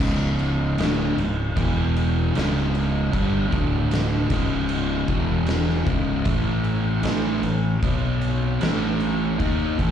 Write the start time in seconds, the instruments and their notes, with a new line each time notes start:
0.00 fingered electric bass C#1, distorted electric guitar C#2 G#2 C#3, kick, crash
0.39 crash
0.78 fingered electric bass D1, distorted electric guitar D2 A2 D3, snare, crash
1.16 fingered electric bass C#1, distorted electric guitar C#2 G#2, crash
1.56 fingered electric bass E1, distorted electric guitar E2 B2 E3, kick, crash
1.96 crash
2.35 fingered electric bass C#1, distorted electric guitar C#2 G#2 C#3, snare, crash
2.58 snare
2.75 crash
3.12 fingered electric bass G1, distorted electric guitar G2 D3 G3, kick, crash
3.51 fingered electric bass D1, distorted electric guitar D2 A2 D3, kick, crash
3.91 snare, crash
4.30 fingered electric bass C#1, distorted electric guitar C#2 G#2 C#3, kick, snare, crash
4.69 crash
5.08 fingered electric bass E1, distorted electric guitar E2 B2 E3, kick, crash
5.46 snare, crash
5.69 snare
5.85 fingered electric bass C#1, distorted electric guitar C#2 G#2 C#3, kick, crash
6.25 fingered electric bass A1, distorted electric guitar A2 E3 A3, kick, crash
6.64 crash
7.03 fingered electric bass A1, distorted electric guitar A2 E3 A3, snare, crash
7.43 fingered electric bass A1, distorted electric guitar A2 E3, crash
7.82 fingered electric bass B1, distorted electric guitar B2 F#3 B3, kick, crash
8.21 crash
8.60 fingered electric bass A1, distorted electric guitar A2 E3 A3, snare, crash
9.00 crash
9.38 fingered electric bass D#2, distorted electric guitar D#3 A#3 D#4, kick, crash
9.78 fingered electric bass A1, distorted electric guitar A2 E3 A3, kick, crash